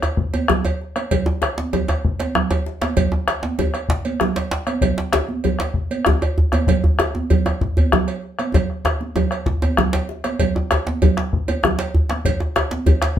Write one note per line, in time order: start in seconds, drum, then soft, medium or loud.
0.02 bombo rim medium
0.02 cowbell soft
0.02 djembe slap soft
0.02 high conga soft
0.02 djembe tone medium
0.17 bombo low loud
0.17 djembe slap soft
0.34 cowbell soft
0.34 high conga medium
0.34 djembe tone medium
0.48 bombo rim loud
0.48 djembe slap medium
0.48 djembe tone medium
0.48 low conga medium
0.48 djembe bass medium
0.65 bombo rim soft
0.65 cowbell medium
0.65 djembe tone medium
0.65 high conga soft
0.81 djembe slap soft
0.96 bombo rim medium
0.96 cowbell soft
0.96 high conga soft
1.11 bombo low medium
1.11 cowbell medium
1.11 low conga medium
1.11 djembe bass medium
1.26 djembe tone medium
1.42 bombo rim medium
1.42 cowbell soft
1.42 djembe slap medium
1.42 djembe tone medium
1.58 djembe slap medium
1.58 high conga soft
1.73 cowbell soft
1.73 djembe tone medium
1.73 low conga medium
1.73 djembe bass medium
1.88 bombo rim medium
1.88 cowbell soft
1.88 djembe tone medium
2.04 bombo low loud
2.04 high conga soft
2.20 cowbell soft
2.20 djembe slap medium
2.20 high conga medium
2.35 bombo rim medium
2.35 djembe tone medium
2.35 low conga medium
2.35 djembe bass soft
2.51 bombo rim soft
2.51 cowbell medium
2.51 djembe tone loud
2.51 djembe bass soft
2.66 djembe slap medium
2.81 bombo rim medium
2.81 cowbell soft
2.81 djembe slap medium
2.81 high conga medium
2.97 bombo low medium
2.97 cowbell medium
2.97 djembe slap soft
2.97 djembe tone medium
2.97 low conga medium
2.97 djembe bass medium
3.12 bombo rim soft
3.12 djembe slap soft
3.12 djembe tone medium
3.28 bombo rim medium
3.28 cowbell soft
3.28 djembe slap medium
3.43 djembe slap medium
3.43 high conga medium
3.59 cowbell soft
3.59 djembe tone medium
3.59 low conga medium
3.59 djembe bass medium
3.74 bombo rim medium
3.74 cowbell soft
3.74 djembe slap soft
3.74 high conga soft
3.89 bombo low medium
3.89 djembe slap medium
3.89 djembe slap soft
4.05 cowbell soft
4.05 high conga medium
4.20 bombo rim medium
4.20 djembe slap medium
4.20 djembe tone medium
4.20 low conga medium
4.36 bombo rim soft
4.36 cowbell soft
4.36 djembe slap medium
4.36 high conga soft
4.51 djembe slap medium
4.51 djembe slap soft
4.67 bombo rim medium
4.67 cowbell soft
4.67 high conga medium
4.81 bombo low medium
4.81 cowbell medium
4.81 djembe slap soft
4.81 low conga medium
4.81 djembe bass medium
4.97 bombo rim soft
4.97 djembe slap medium
4.97 djembe slap soft
5.13 bombo rim medium
5.13 cowbell soft
5.13 djembe slap medium
5.13 djembe tone medium
5.29 high conga medium
5.44 cowbell soft
5.44 low conga medium
5.44 djembe bass medium
5.59 bombo rim medium
5.59 cowbell soft
5.59 djembe slap medium
5.59 djembe slap soft
5.59 high conga soft
5.74 bombo low medium
5.74 djembe slap soft
5.91 cowbell soft
5.91 high conga medium
6.05 bombo rim medium
6.05 djembe slap medium
6.05 djembe tone loud
6.05 djembe tone medium
6.05 low conga medium
6.05 djembe bass medium
6.21 bombo rim soft
6.21 cowbell soft
6.21 djembe tone medium
6.38 djembe slap soft
6.38 djembe bass medium
6.52 bombo rim medium
6.52 cowbell soft
6.52 djembe tone medium
6.52 high conga medium
6.67 bombo low medium
6.67 cowbell medium
6.67 djembe slap soft
6.67 djembe tone medium
6.67 low conga medium
6.67 djembe bass medium
6.84 bombo rim soft
6.84 djembe slap soft
6.84 djembe bass medium
6.99 bombo rim medium
6.99 cowbell soft
6.99 djembe slap medium
6.99 djembe tone medium
7.15 djembe tone medium
7.15 high conga medium
7.30 cowbell soft
7.30 djembe bass medium
7.30 low conga medium
7.46 bombo rim medium
7.46 cowbell soft
7.46 djembe slap soft
7.46 djembe tone loud
7.61 bombo low medium
7.61 djembe slap soft
7.61 djembe tone medium
7.77 cowbell soft
7.77 high conga medium
7.77 djembe bass medium
7.92 bombo rim medium
7.92 djembe slap medium
7.92 djembe tone medium
7.92 djembe bass medium
7.92 low conga medium
8.08 bombo rim soft
8.08 cowbell soft
8.23 djembe slap soft
8.39 bombo rim medium
8.39 cowbell soft
8.39 high conga medium
8.54 bombo low medium
8.54 cowbell medium
8.54 djembe tone medium
8.54 high conga soft
8.54 djembe bass medium
8.54 low conga medium
8.70 bombo rim soft
8.85 bombo rim medium
8.85 cowbell soft
8.85 djembe slap medium
8.85 djembe tone medium
9.01 djembe slap soft
9.01 high conga medium
9.16 bombo rim soft
9.16 cowbell soft
9.16 djembe tone loud
9.16 djembe bass medium
9.16 low conga medium
9.31 bombo rim medium
9.31 cowbell soft
9.31 djembe slap soft
9.46 bombo rim soft
9.46 bombo low medium
9.46 djembe slap soft
9.46 djembe tone medium
9.62 cowbell soft
9.62 djembe slap soft
9.62 djembe tone medium
9.62 high conga medium
9.77 bombo rim medium
9.77 djembe slap medium
9.77 djembe tone medium
9.77 low conga medium
9.77 djembe bass medium
9.93 cowbell soft
9.93 djembe slap loud
9.93 djembe bass soft
10.09 djembe slap soft
10.24 bombo rim medium
10.24 cowbell soft
10.24 djembe slap medium
10.24 high conga medium
10.39 bombo low medium
10.39 cowbell medium
10.39 djembe slap soft
10.39 djembe bass medium
10.39 low conga medium
10.55 bombo rim soft
10.55 djembe slap soft
10.55 djembe tone medium
10.71 bombo rim medium
10.71 cowbell soft
10.71 djembe slap medium
10.71 djembe tone medium
10.87 djembe slap medium
10.87 high conga soft
11.02 cowbell medium
11.02 djembe bass medium
11.02 low conga medium
11.02 djembe bass medium
11.17 bombo rim medium
11.17 djembe slap medium
11.17 djembe slap soft
11.33 bombo low medium
11.33 djembe slap soft
11.48 cowbell medium
11.48 djembe tone medium
11.48 high conga medium
11.63 bombo rim medium
11.63 djembe slap medium
11.63 djembe tone medium
11.65 djembe tone medium
11.65 djembe bass medium
11.65 low conga medium
11.79 bombo rim soft
11.79 cowbell medium
11.79 djembe slap medium
11.94 djembe slap soft
11.94 djembe bass medium
12.09 bombo rim medium
12.09 djembe slap medium
12.09 high conga medium
12.25 bombo low loud
12.25 cowbell medium
12.25 djembe slap soft
12.25 djembe bass medium
12.25 low conga medium
12.40 bombo rim soft
12.40 djembe tone medium
12.56 bombo rim medium
12.56 cowbell soft
12.56 djembe slap medium
12.56 djembe tone medium
12.71 djembe slap medium
12.71 high conga medium
12.86 cowbell soft
12.86 djembe bass medium
12.86 low conga medium
12.86 djembe bass medium
13.02 bombo rim medium
13.02 cowbell soft
13.02 djembe slap medium
13.02 djembe slap soft
13.02 high conga soft